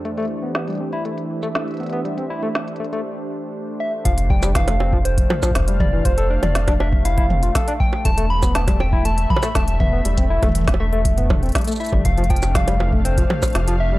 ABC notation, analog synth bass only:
X:1
M:4/4
L:1/16
Q:1/4=120
K:Flyd
V:1 name="Analog synth bass" clef=bass
z16 | z16 | F,,,8- F,,,2 z2 F,,,4 | F,,,3 F,,,8- F,,, z4 |
E,,,8- E,,,2 z2 E,,,4 | E,,,3 E,,,8- E,,, z3 G,,, | F,,,8- F,,,2 z2 F,,,4 |]